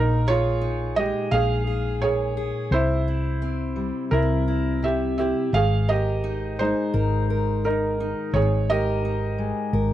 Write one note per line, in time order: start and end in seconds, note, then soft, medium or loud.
0.00 1.11 A#1 medium
0.00 2.00 A#2 medium
0.00 0.27 D#4 medium
0.00 0.29 A#4 medium
0.27 0.95 F4 medium
0.27 1.32 G#4 medium
0.27 1.00 C#5 loud
0.61 2.67 D#4 medium
0.96 2.67 G#3 medium
0.96 1.31 G4 medium
0.96 1.33 D#5 medium
1.31 2.51 A#1 medium
1.31 1.66 G#4 medium
1.31 1.99 G#4 medium
1.31 2.04 F5 medium
1.67 2.36 G#4 medium
2.01 2.67 A#2 medium
2.01 2.69 G#4 medium
2.01 2.74 C#5 medium
2.37 2.72 G#4 medium
2.71 3.90 C2 medium
2.71 4.81 C3 medium
2.71 4.09 E4 medium
2.71 4.16 C5 medium
3.08 4.12 E4 soft
3.42 5.49 C4 soft
3.76 5.49 G3 medium
4.11 5.32 C2 medium
4.11 4.79 E4 medium
4.11 4.46 E4 soft
4.11 4.84 A#4 medium
4.48 5.18 E4 soft
4.83 5.49 C3 medium
4.83 5.17 G4 medium
4.83 5.16 E5 medium
5.18 5.50 E4 soft
5.18 5.52 G4 medium
5.18 5.54 E5 medium
5.53 6.72 G#1 medium
5.53 8.33 G#2 medium
5.53 5.87 G#4 medium
5.53 5.90 F5 medium
5.88 6.56 G4 medium
5.88 6.93 A#4 medium
5.88 6.61 D#5 medium
6.24 8.00 D#4 medium
6.59 8.73 G#3 medium
6.59 7.61 D#4 medium
6.59 7.67 C5 medium
6.94 8.12 G#1 medium
6.94 7.30 A#4 medium
7.30 8.37 A#4 medium
7.64 8.30 D#3 medium
7.64 8.31 D#4 medium
7.64 8.36 A#4 medium
8.00 9.04 D#4 soft
8.33 9.52 G#1 medium
8.33 9.93 G#2 medium
8.33 8.67 G#4 medium
8.33 8.69 C#5 medium
8.70 9.93 G4 medium
8.70 9.73 A#4 medium
8.70 9.93 D#5 medium
9.05 9.93 D#4 medium
9.38 9.93 G#3 medium
9.73 9.93 G#1 medium
9.73 9.93 A#4 medium